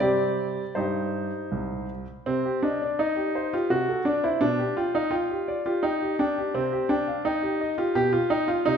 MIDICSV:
0, 0, Header, 1, 2, 480
1, 0, Start_track
1, 0, Key_signature, -3, "minor"
1, 0, Tempo, 744417
1, 7, Time_signature, 3, 2, 24, 8
1, 1927, Tempo, 707547
1, 5851, End_track
2, 0, Start_track
2, 0, Title_t, "Grand piano"
2, 0, Program_c, 0, 0
2, 1, Note_on_c, 0, 74, 73
2, 2, Note_on_c, 0, 60, 38
2, 4, Note_on_c, 0, 48, 43
2, 4, Note_on_c, 0, 55, 35
2, 8, Note_on_c, 0, 67, 57
2, 348, Note_off_c, 0, 48, 0
2, 396, Note_off_c, 0, 60, 0
2, 397, Note_off_c, 0, 55, 0
2, 471, Note_off_c, 0, 67, 0
2, 484, Note_on_c, 0, 72, 48
2, 491, Note_on_c, 0, 43, 42
2, 494, Note_off_c, 0, 74, 0
2, 495, Note_on_c, 0, 63, 38
2, 496, Note_on_c, 0, 67, 38
2, 831, Note_off_c, 0, 43, 0
2, 978, Note_on_c, 0, 36, 38
2, 1195, Note_off_c, 0, 63, 0
2, 1196, Note_off_c, 0, 67, 0
2, 1215, Note_off_c, 0, 72, 0
2, 1315, Note_off_c, 0, 36, 0
2, 1458, Note_on_c, 0, 60, 62
2, 1459, Note_on_c, 0, 48, 47
2, 1574, Note_off_c, 0, 48, 0
2, 1583, Note_on_c, 0, 67, 36
2, 1671, Note_off_c, 0, 60, 0
2, 1693, Note_on_c, 0, 62, 60
2, 1700, Note_on_c, 0, 75, 34
2, 1704, Note_off_c, 0, 67, 0
2, 1816, Note_on_c, 0, 74, 33
2, 1820, Note_off_c, 0, 75, 0
2, 1927, Note_off_c, 0, 62, 0
2, 1928, Note_on_c, 0, 63, 68
2, 1930, Note_off_c, 0, 74, 0
2, 1931, Note_on_c, 0, 75, 38
2, 2044, Note_on_c, 0, 67, 32
2, 2057, Note_off_c, 0, 75, 0
2, 2173, Note_off_c, 0, 67, 0
2, 2175, Note_on_c, 0, 72, 40
2, 2290, Note_off_c, 0, 63, 0
2, 2298, Note_off_c, 0, 72, 0
2, 2298, Note_on_c, 0, 65, 62
2, 2299, Note_on_c, 0, 67, 37
2, 2411, Note_on_c, 0, 66, 70
2, 2414, Note_off_c, 0, 65, 0
2, 2414, Note_on_c, 0, 48, 45
2, 2415, Note_off_c, 0, 67, 0
2, 2529, Note_off_c, 0, 48, 0
2, 2535, Note_on_c, 0, 69, 35
2, 2628, Note_off_c, 0, 66, 0
2, 2648, Note_on_c, 0, 62, 63
2, 2652, Note_on_c, 0, 74, 40
2, 2659, Note_off_c, 0, 69, 0
2, 2770, Note_off_c, 0, 62, 0
2, 2774, Note_on_c, 0, 64, 62
2, 2776, Note_on_c, 0, 72, 31
2, 2778, Note_off_c, 0, 74, 0
2, 2889, Note_on_c, 0, 62, 74
2, 2890, Note_on_c, 0, 47, 50
2, 2893, Note_off_c, 0, 64, 0
2, 2894, Note_off_c, 0, 72, 0
2, 3008, Note_off_c, 0, 47, 0
2, 3011, Note_on_c, 0, 67, 38
2, 3108, Note_off_c, 0, 62, 0
2, 3134, Note_on_c, 0, 65, 66
2, 3137, Note_on_c, 0, 79, 36
2, 3139, Note_off_c, 0, 67, 0
2, 3254, Note_off_c, 0, 65, 0
2, 3254, Note_on_c, 0, 77, 33
2, 3256, Note_on_c, 0, 63, 65
2, 3262, Note_off_c, 0, 79, 0
2, 3363, Note_on_c, 0, 65, 67
2, 3365, Note_on_c, 0, 79, 39
2, 3375, Note_off_c, 0, 77, 0
2, 3376, Note_off_c, 0, 63, 0
2, 3496, Note_off_c, 0, 79, 0
2, 3500, Note_on_c, 0, 67, 33
2, 3618, Note_on_c, 0, 74, 40
2, 3623, Note_off_c, 0, 67, 0
2, 3702, Note_off_c, 0, 65, 0
2, 3738, Note_on_c, 0, 65, 63
2, 3739, Note_on_c, 0, 67, 38
2, 3742, Note_off_c, 0, 74, 0
2, 3852, Note_on_c, 0, 63, 67
2, 3856, Note_off_c, 0, 65, 0
2, 3856, Note_on_c, 0, 79, 42
2, 3863, Note_off_c, 0, 67, 0
2, 3981, Note_off_c, 0, 79, 0
2, 3985, Note_on_c, 0, 67, 37
2, 4070, Note_off_c, 0, 63, 0
2, 4100, Note_on_c, 0, 62, 68
2, 4103, Note_on_c, 0, 79, 40
2, 4107, Note_off_c, 0, 67, 0
2, 4227, Note_off_c, 0, 79, 0
2, 4228, Note_on_c, 0, 67, 36
2, 4316, Note_off_c, 0, 62, 0
2, 4340, Note_on_c, 0, 60, 67
2, 4342, Note_on_c, 0, 48, 49
2, 4343, Note_off_c, 0, 67, 0
2, 4457, Note_off_c, 0, 48, 0
2, 4461, Note_on_c, 0, 67, 41
2, 4555, Note_off_c, 0, 60, 0
2, 4575, Note_on_c, 0, 62, 68
2, 4578, Note_on_c, 0, 79, 41
2, 4585, Note_off_c, 0, 67, 0
2, 4699, Note_on_c, 0, 77, 36
2, 4703, Note_off_c, 0, 79, 0
2, 4790, Note_off_c, 0, 62, 0
2, 4816, Note_off_c, 0, 77, 0
2, 4817, Note_on_c, 0, 63, 70
2, 4824, Note_on_c, 0, 79, 43
2, 4936, Note_on_c, 0, 67, 39
2, 4944, Note_off_c, 0, 79, 0
2, 5060, Note_off_c, 0, 67, 0
2, 5062, Note_on_c, 0, 75, 42
2, 5146, Note_off_c, 0, 63, 0
2, 5175, Note_on_c, 0, 67, 41
2, 5177, Note_on_c, 0, 65, 69
2, 5183, Note_off_c, 0, 75, 0
2, 5285, Note_off_c, 0, 67, 0
2, 5294, Note_off_c, 0, 65, 0
2, 5295, Note_on_c, 0, 47, 50
2, 5295, Note_on_c, 0, 67, 81
2, 5403, Note_off_c, 0, 67, 0
2, 5409, Note_off_c, 0, 47, 0
2, 5412, Note_on_c, 0, 65, 72
2, 5414, Note_on_c, 0, 67, 40
2, 5531, Note_off_c, 0, 65, 0
2, 5531, Note_on_c, 0, 63, 76
2, 5533, Note_on_c, 0, 79, 42
2, 5537, Note_off_c, 0, 67, 0
2, 5650, Note_off_c, 0, 63, 0
2, 5652, Note_on_c, 0, 65, 68
2, 5654, Note_on_c, 0, 77, 35
2, 5657, Note_off_c, 0, 79, 0
2, 5770, Note_off_c, 0, 65, 0
2, 5771, Note_on_c, 0, 63, 81
2, 5772, Note_off_c, 0, 77, 0
2, 5777, Note_on_c, 0, 48, 56
2, 5851, Note_off_c, 0, 48, 0
2, 5851, Note_off_c, 0, 63, 0
2, 5851, End_track
0, 0, End_of_file